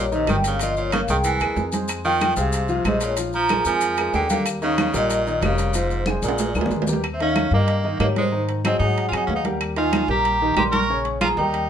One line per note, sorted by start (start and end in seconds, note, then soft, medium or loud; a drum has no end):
0.00 0.25 A#1 loud
0.12 0.28 C3 medium
0.12 0.25 D#3 medium
0.12 0.25 D#4 medium
0.12 0.26 D#5 medium
0.12 0.30 D#5 medium
0.12 high conga soft
0.12 maracas soft
0.27 1.03 G1 medium
0.27 0.36 D#3 medium
0.27 0.55 G3 medium
0.27 0.55 G4 medium
0.27 0.55 A#4 medium
0.27 0.37 G5 medium
0.27 high conga medium
0.27 high timbale medium
0.27 low timbale medium
0.27 claves medium
0.27 maracas soft
0.44 0.61 C#3 medium
0.44 0.62 F5 medium
0.44 high conga soft
0.44 high timbale medium
0.44 maracas medium
0.59 0.76 A#2 medium
0.59 0.87 F3 medium
0.59 0.87 F4 medium
0.59 0.76 D#5 medium
0.59 0.87 F5 medium
0.59 high conga soft
0.59 high timbale medium
0.59 maracas medium
0.77 0.92 A#2 medium
0.77 0.93 C#5 medium
0.77 high conga soft
0.77 maracas soft
0.92 1.00 C#3 medium
0.92 1.06 A#3 medium
0.92 1.06 A#4 medium
0.92 1.07 C#5 medium
0.92 1.01 F5 medium
0.92 high conga medium
0.92 high timbale loud
0.92 low timbale medium
0.92 claves medium
0.92 maracas soft
1.08 1.38 C2 medium
1.08 1.17 D#3 medium
1.08 1.35 G#3 medium
1.08 1.36 G#4 medium
1.08 1.36 A#4 medium
1.08 1.17 G5 medium
1.08 high conga soft
1.08 maracas medium
1.24 1.70 E3 medium
1.24 1.70 G#5 medium
1.24 high conga soft
1.24 high timbale medium
1.24 maracas medium
1.40 1.56 D#2 medium
1.40 1.68 G#3 medium
1.40 1.68 G#4 medium
1.40 1.68 A#4 medium
1.40 high conga soft
1.40 high timbale medium
1.40 claves medium
1.40 maracas soft
1.56 2.31 F2 medium
1.56 high conga soft
1.56 low timbale medium
1.56 maracas soft
1.72 2.00 G#3 medium
1.72 2.00 G#4 medium
1.72 2.00 C5 medium
1.72 high conga medium
1.72 high timbale medium
1.72 maracas medium
1.88 high conga soft
1.88 high timbale medium
1.88 claves medium
1.88 maracas medium
2.04 2.35 D#3 medium
2.04 2.32 F3 medium
2.04 2.32 F4 medium
2.04 2.32 F5 medium
2.04 2.35 G5 loud
2.04 high conga soft
2.04 maracas soft
2.21 high conga medium
2.21 high timbale medium
2.21 low timbale medium
2.21 claves medium
2.21 maracas soft
2.36 2.82 C2 medium
2.36 2.82 C3 medium
2.36 2.64 G#3 medium
2.36 2.64 G#4 medium
2.36 2.64 C5 medium
2.36 2.83 F5 medium
2.36 maracas medium
2.52 high conga soft
2.52 high timbale medium
2.52 maracas medium
2.68 2.82 F3 medium
2.68 2.83 F4 medium
2.68 2.83 F5 medium
2.68 high conga soft
2.68 maracas soft
2.84 3.60 A#1 medium
2.84 3.00 C3 medium
2.84 3.12 G#3 medium
2.84 3.12 G#4 medium
2.84 3.13 C5 medium
2.84 3.03 D#5 medium
2.84 high conga medium
2.84 high timbale medium
2.84 low timbale medium
2.84 claves medium
2.84 maracas soft
3.01 3.17 A#2 medium
3.01 3.17 C#5 medium
3.01 high timbale medium
3.01 maracas medium
3.17 3.44 F3 medium
3.17 3.45 F4 medium
3.17 3.45 F5 medium
3.17 high conga soft
3.17 high timbale medium
3.17 maracas medium
3.33 3.64 F3 medium
3.33 3.64 A#5 loud
3.33 high conga soft
3.33 maracas soft
3.49 3.63 G#3 medium
3.49 3.64 G#4 medium
3.49 3.64 A#4 medium
3.49 high conga medium
3.49 high timbale medium
3.49 low timbale medium
3.49 claves medium
3.49 maracas soft
3.65 4.10 F2 medium
3.65 4.11 F3 medium
3.65 3.92 G#3 medium
3.65 3.93 G#4 medium
3.65 3.93 A#4 medium
3.65 4.11 G#5 loud
3.65 high conga soft
3.65 maracas medium
3.81 high conga soft
3.81 high timbale medium
3.81 maracas medium
3.97 4.24 G#3 medium
3.97 4.25 G#4 medium
3.97 4.25 A#4 medium
3.97 high conga soft
3.97 high timbale medium
3.97 claves medium
3.97 maracas soft
4.13 4.89 D#2 medium
4.13 4.29 D3 medium
4.13 4.29 G5 medium
4.13 high conga soft
4.13 low timbale medium
4.13 maracas soft
4.30 4.45 D3 medium
4.30 4.57 G3 medium
4.30 4.57 G4 medium
4.30 4.57 A#4 medium
4.30 4.45 F5 loud
4.30 high conga medium
4.30 high timbale medium
4.30 maracas medium
4.46 high timbale medium
4.46 claves medium
4.46 maracas medium
4.62 4.93 C#3 medium
4.62 4.88 D#3 medium
4.62 4.89 D#4 medium
4.62 4.89 D#5 medium
4.62 4.96 F5 medium
4.62 high conga soft
4.62 maracas soft
4.78 high conga loud
4.78 high timbale medium
4.78 low timbale medium
4.78 claves medium
4.78 maracas soft
4.93 5.39 A#1 loud
4.93 5.40 A#2 medium
4.93 5.20 G3 medium
4.93 5.20 G4 medium
4.93 5.21 A#4 medium
4.93 5.45 D#5 medium
4.93 maracas medium
5.10 high conga soft
5.10 high timbale medium
5.10 maracas medium
5.26 5.40 D#3 medium
5.26 5.40 D#4 medium
5.26 5.40 D#5 medium
5.26 high conga soft
5.26 maracas soft
5.42 6.17 F1 medium
5.42 5.74 C#3 medium
5.42 5.69 G3 medium
5.42 5.69 G4 medium
5.42 5.69 A#4 medium
5.42 5.76 F5 medium
5.42 high conga medium
5.42 high timbale medium
5.42 low timbale medium
5.42 claves medium
5.42 maracas soft
5.58 high conga soft
5.58 high timbale medium
5.58 maracas medium
5.74 6.05 G#2 medium
5.74 6.02 F3 medium
5.74 6.02 F4 medium
5.74 6.05 C5 medium
5.74 6.02 F5 medium
5.74 high conga soft
5.74 high timbale medium
5.74 maracas medium
5.90 high conga soft
5.90 maracas soft
6.06 6.21 G#3 medium
6.06 6.21 G#4 medium
6.06 6.21 C5 medium
6.06 high conga medium
6.06 high timbale medium
6.06 claves medium
6.06 maracas soft
6.22 6.53 A#1 loud
6.22 6.84 A#2 medium
6.22 6.50 G#3 medium
6.22 6.50 G#4 medium
6.22 6.50 A#4 medium
6.22 6.84 D5 medium
6.22 high conga soft
6.22 maracas medium
6.29 high timbale medium
6.38 high conga soft
6.38 low timbale medium
6.38 maracas medium
6.55 6.70 D2 medium
6.55 6.82 G#3 medium
6.55 6.82 G#4 medium
6.55 6.82 A#4 medium
6.55 high conga medium
6.55 claves medium
6.55 maracas soft
6.61 low timbale loud
6.66 low conga medium
6.70 7.46 D#2 medium
6.70 low timbale medium
6.70 maracas soft
6.76 low conga medium
6.82 low timbale medium
6.87 7.01 G3 medium
6.87 7.02 G4 medium
6.87 7.01 A#4 medium
6.87 low conga medium
6.87 maracas medium
6.93 low timbale medium
7.03 high conga soft
7.03 high timbale medium
7.03 claves medium
7.13 7.19 C4 medium
7.13 7.20 E5 medium
7.19 7.47 D#3 medium
7.19 7.51 C#4 medium
7.19 7.47 D#4 medium
7.19 7.47 D#5 medium
7.19 7.54 F5 medium
7.19 high conga soft
7.19 high timbale medium
7.36 high conga medium
7.36 high timbale medium
7.36 low timbale medium
7.36 claves medium
7.51 7.96 G2 medium
7.51 7.79 G3 medium
7.51 7.98 A#3 medium
7.51 7.79 G4 medium
7.51 7.79 A#4 medium
7.51 8.03 D#5 medium
7.51 high conga soft
7.67 high conga soft
7.67 high timbale medium
7.84 7.97 D#3 medium
7.84 7.97 D#4 medium
7.84 7.98 D#5 medium
7.84 high conga soft
7.99 8.75 G#2 medium
7.99 8.26 G3 medium
7.99 8.07 A#3 medium
7.99 8.26 G4 medium
7.99 8.27 A#4 medium
7.99 8.09 C#5 medium
7.99 high conga medium
7.99 high timbale medium
7.99 low timbale medium
7.99 claves medium
8.16 8.47 G#3 medium
8.16 8.48 C5 medium
8.16 high conga medium
8.16 high timbale medium
8.32 8.58 D#3 medium
8.32 8.58 D#4 medium
8.32 8.59 D#5 medium
8.32 high conga soft
8.49 high conga soft
8.49 high timbale medium
8.65 8.78 F#3 medium
8.65 8.78 C4 medium
8.65 8.78 F#4 medium
8.65 8.78 G#4 medium
8.65 8.80 D#5 loud
8.65 high conga loud
8.65 high timbale loud
8.65 low timbale medium
8.65 claves medium
8.79 9.10 G#2 loud
8.79 9.07 F#3 medium
8.79 9.05 D#4 medium
8.79 9.07 F#4 medium
8.79 9.07 G#4 medium
8.79 9.06 F#5 loud
8.79 high conga soft
8.97 high conga soft
8.97 high timbale medium
9.08 9.27 F2 medium
9.08 9.16 F4 medium
9.08 9.18 G#5 medium
9.08 claves medium
9.13 9.39 F#3 medium
9.13 9.39 F#4 medium
9.13 9.39 G#4 medium
9.13 high conga soft
9.13 high timbale loud
9.17 9.25 D#4 medium
9.17 9.26 F#5 medium
9.27 10.03 D#2 medium
9.27 9.35 C#4 medium
9.27 9.36 F5 medium
9.27 high conga soft
9.27 low timbale medium
9.36 9.44 D#4 medium
9.36 9.45 F#5 medium
9.45 9.71 G3 medium
9.45 9.71 G4 medium
9.45 9.71 A#4 medium
9.45 high conga medium
9.45 high timbale medium
9.61 high conga soft
9.61 high timbale medium
9.61 claves medium
9.76 10.03 D#3 medium
9.76 10.03 D#4 medium
9.76 10.07 F4 medium
9.76 10.03 D#5 medium
9.76 10.07 G#5 medium
9.76 high conga soft
9.76 high timbale medium
9.93 high conga loud
9.93 high timbale medium
9.93 low timbale medium
9.93 claves medium
10.08 10.53 A#1 loud
10.08 10.35 G3 medium
10.08 10.35 G4 medium
10.08 10.54 G4 medium
10.08 10.36 A#4 medium
10.08 10.59 A#5 loud
10.08 high conga soft
10.25 high conga soft
10.25 high timbale medium
10.41 10.55 D#3 medium
10.41 10.55 D#4 medium
10.41 10.55 D#5 medium
10.41 high conga soft
10.56 11.31 A#1 medium
10.56 10.84 G3 medium
10.56 10.64 G4 medium
10.56 10.84 G4 medium
10.56 10.84 A#4 medium
10.56 10.65 C6 loud
10.56 high conga medium
10.56 high timbale medium
10.56 low timbale medium
10.56 claves medium
10.72 11.02 A#4 medium
10.72 11.04 C#6 loud
10.72 high conga medium
10.72 high timbale medium
10.89 11.16 C#3 medium
10.89 11.16 C#4 medium
10.89 11.16 C#5 medium
10.89 high conga soft
11.05 high conga soft
11.05 high timbale medium
11.21 11.35 F3 medium
11.21 11.28 F4 medium
11.21 11.35 F4 medium
11.21 11.35 G#4 medium
11.21 11.30 A#5 medium
11.21 high conga loud
11.21 high timbale medium
11.21 low timbale medium
11.21 claves medium
11.37 11.67 D#2 loud
11.37 11.64 G3 medium
11.37 11.70 D#4 medium
11.37 11.64 G4 medium
11.37 11.64 A#4 medium
11.37 11.70 G5 medium
11.37 high conga soft
11.53 high conga soft
11.53 high timbale medium